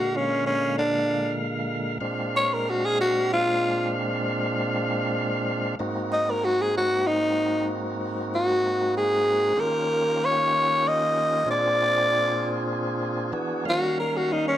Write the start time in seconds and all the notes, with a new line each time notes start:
Already playing: A#2 D3 G#3 A#3 F#4 F5
0.16 C#4
0.46 C#4
0.78 D4
2.00 A#2 G#3 C4 D4 F5
2.36 C#5
2.53 A#4
2.70 F#4
2.85 G#4
3.01 F#4
3.33 F4
5.79 G#2 A#3 C4 D#4 F#4
6.13 D#5
6.30 A#4
6.45 F#4
6.61 G#4
6.77 F#4
7.07 D#4
8.35 F#4
8.97 G#4
9.56 D#3 A#3 C#4 F4 G4 A#4
10.24 C#5
10.88 D#5
11.45 A#2 C4 D4 F4 G#4
11.51 D5
13.32 E3 B3 D4 F#4 G#4
13.65 D#3 G3 A#3 C#4 F#4 F5
14.00 A#4
14.17 F#4
14.32 D#4
14.48 C#4